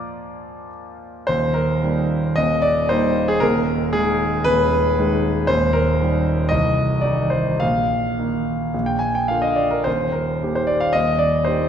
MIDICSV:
0, 0, Header, 1, 2, 480
1, 0, Start_track
1, 0, Key_signature, -3, "major"
1, 0, Tempo, 571973
1, 1073, Time_signature, 4, 2, 24, 8
1, 1073, Tempo, 545455
1, 2033, Tempo, 518135
1, 6353, Tempo, 564440
1, 9233, Tempo, 526778
1, 10388, End_track
2, 0, Start_track
2, 0, Title_t, "Grand piano"
2, 0, Program_c, 0, 0
2, 0, Control_c, 0, 64, 127
2, 0, Note_on_c, 0, 46, 55
2, 0, Note_on_c, 0, 53, 50
2, 0, Note_on_c, 0, 58, 47
2, 0, Note_on_c, 0, 65, 48
2, 0, Note_on_c, 0, 74, 67
2, 0, Note_on_c, 0, 82, 77
2, 0, Note_on_c, 0, 86, 96
2, 560, Note_off_c, 0, 74, 0
2, 560, Note_off_c, 0, 82, 0
2, 589, Note_off_c, 0, 86, 0
2, 1026, Note_off_c, 0, 46, 0
2, 1031, Note_off_c, 0, 53, 0
2, 1033, Note_off_c, 0, 58, 0
2, 1037, Note_off_c, 0, 65, 0
2, 1064, Note_on_c, 0, 72, 88
2, 1082, Note_on_c, 0, 27, 49
2, 1082, Note_on_c, 0, 39, 60
2, 1088, Control_c, 0, 64, 0
2, 1259, Control_c, 0, 64, 127
2, 1302, Note_on_c, 0, 70, 70
2, 1312, Note_off_c, 0, 72, 0
2, 1563, Note_on_c, 0, 55, 40
2, 1567, Note_on_c, 0, 58, 38
2, 1574, Note_on_c, 0, 63, 39
2, 2001, Note_off_c, 0, 55, 0
2, 2003, Note_off_c, 0, 58, 0
2, 2006, Note_off_c, 0, 63, 0
2, 2009, Note_off_c, 0, 27, 0
2, 2009, Note_off_c, 0, 39, 0
2, 2021, Note_on_c, 0, 75, 86
2, 2026, Note_off_c, 0, 70, 0
2, 2035, Note_on_c, 0, 39, 47
2, 2037, Note_on_c, 0, 27, 52
2, 2048, Control_c, 0, 64, 0
2, 2215, Control_c, 0, 64, 127
2, 2262, Note_on_c, 0, 74, 84
2, 2272, Note_off_c, 0, 75, 0
2, 2515, Note_off_c, 0, 74, 0
2, 2516, Note_on_c, 0, 72, 85
2, 2534, Note_on_c, 0, 55, 46
2, 2535, Note_on_c, 0, 58, 47
2, 2541, Note_on_c, 0, 63, 51
2, 2878, Note_on_c, 0, 68, 87
2, 2882, Note_off_c, 0, 72, 0
2, 2974, Note_off_c, 0, 55, 0
2, 2974, Note_off_c, 0, 58, 0
2, 2977, Note_off_c, 0, 39, 0
2, 2977, Note_off_c, 0, 63, 0
2, 2978, Note_off_c, 0, 27, 0
2, 2989, Note_on_c, 0, 70, 93
2, 3001, Note_off_c, 0, 68, 0
2, 3009, Note_on_c, 0, 39, 59
2, 3011, Note_on_c, 0, 27, 52
2, 3023, Control_c, 0, 64, 0
2, 3185, Control_c, 0, 64, 127
2, 3475, Note_on_c, 0, 68, 88
2, 3476, Note_off_c, 0, 70, 0
2, 3496, Note_on_c, 0, 51, 46
2, 3497, Note_on_c, 0, 56, 43
2, 3503, Note_on_c, 0, 63, 47
2, 3937, Note_off_c, 0, 51, 0
2, 3938, Note_off_c, 0, 56, 0
2, 3941, Note_off_c, 0, 63, 0
2, 3942, Note_off_c, 0, 39, 0
2, 3943, Note_off_c, 0, 27, 0
2, 3955, Note_on_c, 0, 71, 105
2, 3965, Note_off_c, 0, 68, 0
2, 3972, Note_on_c, 0, 27, 54
2, 3976, Note_on_c, 0, 39, 52
2, 4454, Note_on_c, 0, 51, 45
2, 4459, Note_on_c, 0, 56, 49
2, 4459, Note_on_c, 0, 63, 45
2, 4893, Note_off_c, 0, 51, 0
2, 4895, Note_off_c, 0, 56, 0
2, 4895, Note_off_c, 0, 63, 0
2, 4901, Note_off_c, 0, 27, 0
2, 4904, Note_off_c, 0, 39, 0
2, 4908, Note_on_c, 0, 72, 94
2, 4922, Note_off_c, 0, 71, 0
2, 4923, Note_on_c, 0, 27, 53
2, 4926, Note_on_c, 0, 39, 60
2, 4944, Control_c, 0, 64, 0
2, 5074, Control_c, 0, 64, 127
2, 5148, Note_on_c, 0, 70, 78
2, 5152, Note_off_c, 0, 72, 0
2, 5412, Note_on_c, 0, 51, 40
2, 5414, Note_on_c, 0, 55, 39
2, 5417, Note_on_c, 0, 63, 38
2, 5836, Note_off_c, 0, 27, 0
2, 5838, Note_off_c, 0, 39, 0
2, 5839, Note_off_c, 0, 51, 0
2, 5840, Note_off_c, 0, 55, 0
2, 5841, Note_off_c, 0, 63, 0
2, 5847, Note_on_c, 0, 75, 83
2, 5860, Note_off_c, 0, 70, 0
2, 5867, Note_on_c, 0, 36, 56
2, 5868, Note_on_c, 0, 24, 49
2, 5881, Control_c, 0, 64, 0
2, 6022, Control_c, 0, 64, 127
2, 6334, Note_on_c, 0, 74, 68
2, 6343, Note_off_c, 0, 75, 0
2, 6356, Note_on_c, 0, 51, 35
2, 6356, Note_on_c, 0, 55, 39
2, 6360, Note_on_c, 0, 63, 40
2, 6581, Note_on_c, 0, 72, 64
2, 6585, Note_off_c, 0, 74, 0
2, 6813, Note_off_c, 0, 51, 0
2, 6813, Note_off_c, 0, 55, 0
2, 6815, Note_off_c, 0, 63, 0
2, 6817, Note_off_c, 0, 36, 0
2, 6818, Note_off_c, 0, 24, 0
2, 6833, Note_on_c, 0, 77, 80
2, 6839, Note_off_c, 0, 72, 0
2, 6851, Note_on_c, 0, 46, 43
2, 6852, Note_on_c, 0, 34, 43
2, 6863, Control_c, 0, 64, 0
2, 7012, Control_c, 0, 64, 127
2, 7329, Note_on_c, 0, 51, 29
2, 7335, Note_on_c, 0, 58, 27
2, 7338, Note_on_c, 0, 63, 33
2, 7768, Note_off_c, 0, 51, 0
2, 7771, Note_off_c, 0, 58, 0
2, 7772, Note_off_c, 0, 63, 0
2, 7773, Note_off_c, 0, 46, 0
2, 7774, Note_off_c, 0, 34, 0
2, 7804, Note_on_c, 0, 34, 44
2, 7810, Note_on_c, 0, 46, 40
2, 7816, Control_c, 0, 64, 0
2, 7909, Note_on_c, 0, 79, 67
2, 7914, Note_off_c, 0, 77, 0
2, 7972, Control_c, 0, 64, 127
2, 8016, Note_on_c, 0, 80, 70
2, 8036, Note_off_c, 0, 79, 0
2, 8150, Note_off_c, 0, 80, 0
2, 8153, Note_on_c, 0, 79, 58
2, 8266, Note_on_c, 0, 77, 72
2, 8278, Note_off_c, 0, 79, 0
2, 8281, Note_on_c, 0, 50, 32
2, 8284, Note_on_c, 0, 58, 36
2, 8289, Note_on_c, 0, 65, 35
2, 8380, Note_on_c, 0, 75, 61
2, 8394, Note_off_c, 0, 77, 0
2, 8499, Note_on_c, 0, 74, 60
2, 8511, Note_off_c, 0, 75, 0
2, 8626, Note_on_c, 0, 70, 63
2, 8630, Note_off_c, 0, 74, 0
2, 8725, Note_off_c, 0, 50, 0
2, 8726, Note_off_c, 0, 58, 0
2, 8729, Note_off_c, 0, 65, 0
2, 8733, Note_off_c, 0, 34, 0
2, 8737, Note_off_c, 0, 46, 0
2, 8741, Note_on_c, 0, 72, 73
2, 8752, Note_off_c, 0, 70, 0
2, 8761, Note_on_c, 0, 39, 44
2, 8762, Note_on_c, 0, 27, 44
2, 8777, Control_c, 0, 64, 0
2, 8924, Control_c, 0, 64, 127
2, 8980, Note_on_c, 0, 70, 54
2, 8988, Note_off_c, 0, 72, 0
2, 9238, Note_on_c, 0, 51, 33
2, 9238, Note_on_c, 0, 58, 30
2, 9248, Note_on_c, 0, 67, 33
2, 9343, Note_off_c, 0, 70, 0
2, 9355, Note_on_c, 0, 72, 70
2, 9460, Note_on_c, 0, 74, 74
2, 9473, Note_off_c, 0, 72, 0
2, 9584, Note_on_c, 0, 77, 80
2, 9585, Note_off_c, 0, 74, 0
2, 9678, Note_off_c, 0, 51, 0
2, 9678, Note_off_c, 0, 58, 0
2, 9682, Note_off_c, 0, 27, 0
2, 9682, Note_off_c, 0, 39, 0
2, 9683, Note_off_c, 0, 67, 0
2, 9696, Note_on_c, 0, 75, 76
2, 9707, Note_off_c, 0, 77, 0
2, 9713, Note_on_c, 0, 39, 40
2, 9716, Note_on_c, 0, 27, 38
2, 9729, Control_c, 0, 64, 0
2, 9861, Control_c, 0, 64, 127
2, 9931, Note_on_c, 0, 74, 75
2, 9946, Note_off_c, 0, 75, 0
2, 10168, Note_on_c, 0, 72, 69
2, 10183, Note_off_c, 0, 74, 0
2, 10187, Note_on_c, 0, 51, 35
2, 10190, Note_on_c, 0, 58, 37
2, 10197, Note_on_c, 0, 67, 42
2, 10388, Note_off_c, 0, 27, 0
2, 10388, Note_off_c, 0, 39, 0
2, 10388, Note_off_c, 0, 51, 0
2, 10388, Note_off_c, 0, 58, 0
2, 10388, Note_off_c, 0, 67, 0
2, 10388, Note_off_c, 0, 72, 0
2, 10388, End_track
0, 0, End_of_file